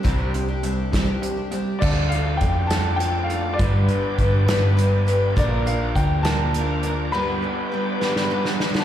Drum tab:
CC |------------|x-----------|------------|------------|
HH |x-x-x-x-x-x-|--x-x-x-x-x-|x-x-x-x-x-x-|x-x-x-x-x-x-|
SD |------o-----|------o-----|------o-----|------o-----|
BD |o-----o-----|o---o-------|o---o-------|o---o-------|

CC |------------|
HH |------------|
SD |------oo-ooo|
BD |------------|